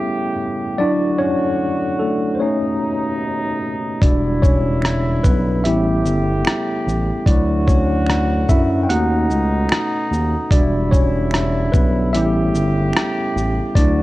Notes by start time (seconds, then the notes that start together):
Already playing: C#3 G3 A3 B3 C#4 E4 G4 E5
0.77 D3 F#3 A3 D4 E4 F#4 D5
1.19 C#4 C#5
1.99 A3 A4
2.35 C5
2.40 D#2 B2 A3 C#4 D#4 C#5
4.01 E1 D3 G3 D4 E4 F#4 D5, kick, closed hi-hat
4.42 C#4 C#5, kick, shaker
4.82 finger snap, cross-stick, closed hi-hat
5.24 B1 B3 B4, kick, shaker
5.64 A1 C#3 G3 A3 B3 C#4 E4 G4 E5, closed hi-hat
6.05 G1, shaker
6.45 finger snap, cross-stick, closed hi-hat
6.87 A1, shaker
7.26 D2 D3 F#3 A3 D4 E4 F#4 C#5 D5, kick, closed hi-hat
7.67 C#4 C#5, kick, shaker
8.06 finger snap, cross-stick, closed hi-hat
8.49 F#2 E4 E5, kick, shaker
8.83 G5
8.88 D#2 B2 A3 C#4 D#4 F#4 F#5, closed hi-hat
9.30 C#2, shaker
9.69 finger snap, cross-stick, closed hi-hat
10.11 D#2, shaker
10.51 E1 D3 G3 D4 E4 F#4 D5, kick, closed hi-hat
10.91 C#4 C#5, kick, shaker
11.31 finger snap, cross-stick, closed hi-hat
11.72 B1 B3 B4, kick, shaker
12.13 A1 C#3 G3 A3 B3 C#4 E4 G4 E5, closed hi-hat
12.54 G1, shaker
12.93 finger snap, cross-stick, closed hi-hat
13.36 A1, shaker
13.75 D2 D3 F#3 A3 D4 E4 F#4 D5, kick, closed hi-hat